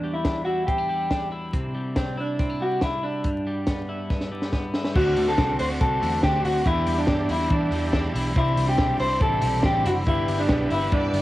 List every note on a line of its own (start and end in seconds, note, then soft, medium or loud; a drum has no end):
0.00 1.53 E2 medium
0.00 0.89 G3 soft
0.00 0.15 D4 medium
0.13 0.44 E4 medium
0.25 0.67 D4 medium
0.25 kick loud
0.25 snare loud
0.25 closed hi-hat medium
0.45 1.32 E4 medium
0.45 0.66 F#4 medium
0.67 0.78 C4 medium
0.67 1.27 G4 medium
0.67 kick loud
0.67 closed hi-hat medium
0.78 1.09 D4 soft
0.89 1.74 G3 soft
1.11 1.96 D4 medium
1.11 kick medium
1.11 snare medium
1.11 closed hi-hat medium
1.32 1.99 E4 medium
1.54 3.25 C3 medium
1.54 kick medium
1.54 closed hi-hat medium
1.75 2.60 G3 medium
1.96 2.19 C4 medium
1.96 2.39 D4 medium
1.96 kick loud
1.96 snare loud
1.96 closed hi-hat medium
2.17 2.59 D4 medium
2.17 3.02 E4 medium
2.39 2.50 C4 medium
2.39 kick loud
2.39 closed hi-hat medium
2.50 2.81 D4 soft
2.60 3.29 G3 soft
2.60 2.83 F#4 medium
2.81 3.67 D4 medium
2.81 3.02 E4 medium
2.81 kick medium
2.81 snare medium
2.81 closed hi-hat medium
3.03 4.70 D4 medium
3.03 3.29 E4 medium
3.24 4.96 G2 medium
3.24 kick medium
3.24 closed hi-hat medium
3.47 4.30 G3 medium
3.67 4.09 B3 soft
3.67 kick loud
3.67 snare loud
3.67 closed hi-hat medium
3.89 4.74 E4 medium
4.10 4.52 B3 medium
4.10 kick loud
4.10 snare soft
4.20 snare soft
4.32 5.00 G3 soft
4.42 snare medium
4.52 5.00 B3 medium
4.52 kick medium
4.52 snare medium
4.74 5.00 E4 medium
4.74 snare medium
4.84 snare medium
4.95 5.14 D2 loud
4.95 5.27 D3 medium
4.95 6.69 D3 medium
4.95 5.27 A3 medium
4.95 6.62 C4 medium
4.95 5.26 C4 medium
4.95 6.63 D4 medium
4.95 5.25 F#4 medium
4.95 5.29 F#4 medium
4.95 6.63 F#4 medium
4.95 kick loud
4.95 crash medium
5.16 5.35 D2 medium
5.16 6.00 A3 medium
5.16 open hi-hat medium
5.27 5.70 A3 soft
5.27 5.69 C4 soft
5.27 5.68 F#4 soft
5.27 5.59 A4 medium
5.38 5.57 C2 medium
5.38 5.80 C4 medium
5.38 kick loud
5.38 snare loud
5.38 closed hi-hat medium
5.59 5.77 D2 loud
5.59 6.44 F#4 medium
5.59 5.65 C5 medium
5.59 open hi-hat medium
5.69 6.01 A3 soft
5.69 6.01 C4 soft
5.69 6.02 F#4 medium
5.81 5.99 C2 medium
5.81 6.22 C4 medium
5.81 6.23 A4 medium
5.81 kick loud
5.81 closed hi-hat medium
6.01 6.20 E2 medium
6.01 6.21 D3 medium
6.01 6.70 A3 medium
6.01 6.22 A3 medium
6.01 6.23 C4 medium
6.01 6.23 F#4 medium
6.01 open hi-hat medium
6.23 6.42 D2 medium
6.23 6.42 D3 medium
6.23 6.43 A3 medium
6.23 6.70 C4 medium
6.23 6.43 C4 medium
6.23 6.44 F#4 medium
6.23 6.43 G4 medium
6.23 kick loud
6.23 snare loud
6.23 closed hi-hat medium
6.43 6.63 D2 medium
6.43 6.64 D3 medium
6.43 6.64 A3 medium
6.43 6.65 C4 medium
6.43 6.70 F#4 medium
6.43 6.66 F#4 medium
6.43 6.65 F#4 medium
6.43 open hi-hat medium
6.64 8.36 E2 medium
6.64 6.84 E2 loud
6.64 6.97 E3 medium
6.64 6.97 B3 medium
6.64 6.97 D4 medium
6.64 8.32 D4 medium
6.64 8.33 E4 medium
6.64 6.99 E4 medium
6.64 6.96 G4 medium
6.64 8.33 G4 medium
6.64 kick loud
6.64 closed hi-hat medium
6.87 7.05 E2 medium
6.87 7.73 G3 medium
6.87 open hi-hat medium
6.97 7.39 B3 soft
6.97 7.39 D4 soft
6.97 7.28 D4 medium
6.97 7.38 G4 medium
7.07 7.26 G2 medium
7.07 7.52 D4 medium
7.07 kick loud
7.07 snare loud
7.07 closed hi-hat medium
7.29 7.48 E2 medium
7.29 8.15 E4 medium
7.29 7.52 E4 medium
7.29 open hi-hat medium
7.39 7.70 B3 soft
7.39 7.71 D4 soft
7.39 7.71 G4 medium
7.50 7.69 E3 medium
7.50 8.11 D4 medium
7.50 7.94 D4 medium
7.50 kick loud
7.50 closed hi-hat medium
7.70 8.08 E2 medium
7.70 7.90 E3 medium
7.70 8.57 G3 medium
7.70 7.91 B3 medium
7.70 7.91 D4 medium
7.70 7.92 G4 medium
7.70 open hi-hat medium
7.91 8.12 E3 medium
7.91 8.13 B3 medium
7.91 8.13 D4 medium
7.91 8.79 D4 medium
7.91 8.13 G4 medium
7.91 kick loud
7.91 snare loud
8.13 8.33 B1 loud
8.13 8.34 E3 medium
8.13 8.35 B3 medium
8.13 8.34 D4 medium
8.13 8.82 E4 medium
8.13 8.35 G4 medium
8.13 open hi-hat medium
8.34 8.54 C2 medium
8.34 8.67 C3 medium
8.34 10.07 C3 medium
8.34 8.67 E3 medium
8.34 8.66 C4 medium
8.34 10.03 C4 medium
8.34 8.66 D4 medium
8.34 10.04 D4 medium
8.34 10.04 E4 medium
8.34 8.69 E4 medium
8.34 8.65 G4 medium
8.34 kick loud
8.34 closed hi-hat medium
8.57 8.75 C2 loud
8.57 9.41 G3 medium
8.57 open hi-hat medium
8.66 9.09 C4 soft
8.66 9.09 D4 soft
8.66 9.08 G4 medium
8.66 9.00 G4 medium
8.78 8.97 B1 medium
8.78 9.21 D4 medium
8.78 kick loud
8.78 snare loud
8.78 closed hi-hat medium
8.99 9.18 C2 medium
8.99 9.84 E4 medium
8.99 9.20 C5 medium
8.99 open hi-hat medium
9.08 9.41 C4 soft
9.08 9.41 D4 soft
9.08 9.42 G4 soft
9.21 9.39 A1 loud
9.21 9.62 D4 medium
9.21 9.65 A4 medium
9.21 kick loud
9.21 closed hi-hat medium
9.41 9.61 B1 loud
9.41 9.62 E3 medium
9.41 10.10 G3 medium
9.41 9.62 C4 medium
9.41 9.63 D4 medium
9.41 9.64 G4 medium
9.41 open hi-hat medium
9.63 9.82 A1 loud
9.63 9.83 E3 medium
9.63 9.84 C4 medium
9.63 10.49 D4 medium
9.63 9.84 D4 medium
9.63 9.85 G4 medium
9.63 9.85 G4 loud
9.63 kick loud
9.63 snare loud
9.63 closed hi-hat medium
9.84 10.03 F#1 medium
9.84 10.05 E3 medium
9.84 10.05 C4 medium
9.84 10.04 D4 medium
9.84 10.11 E4 medium
9.84 9.92 F#4 medium
9.84 10.06 G4 medium
9.84 open hi-hat medium
10.05 10.25 G1 loud
10.05 11.22 G2 medium
10.05 10.38 G3 medium
10.05 11.22 B3 medium
10.05 10.38 D4 medium
10.05 10.38 E4 medium
10.05 11.22 E4 medium
10.05 10.40 E4 loud
10.05 11.22 G4 medium
10.05 10.36 B4 medium
10.05 kick loud
10.05 closed hi-hat medium
10.28 10.46 G1 loud
10.28 11.12 G3 medium
10.28 open hi-hat medium
10.38 10.72 D4 medium
10.38 10.82 D4 soft
10.38 10.81 E4 soft
10.38 10.80 B4 soft
10.49 10.68 B1 medium
10.49 10.91 B3 medium
10.49 kick loud
10.49 snare loud
10.49 closed hi-hat medium
10.70 10.89 G1 medium
10.70 11.22 E4 medium
10.70 10.93 E4 medium
10.70 open hi-hat medium
10.81 11.12 D4 soft
10.81 11.13 E4 soft
10.81 11.13 B4 soft
10.92 11.11 G2 loud
10.92 11.22 B3 medium
10.92 11.22 D4 medium
10.92 11.22 D5 medium
10.92 kick loud
10.92 closed hi-hat medium
11.13 11.22 G1 medium
11.13 11.22 G3 medium
11.13 11.22 D4 medium
11.13 11.22 E4 medium
11.13 11.22 B4 medium
11.13 open hi-hat medium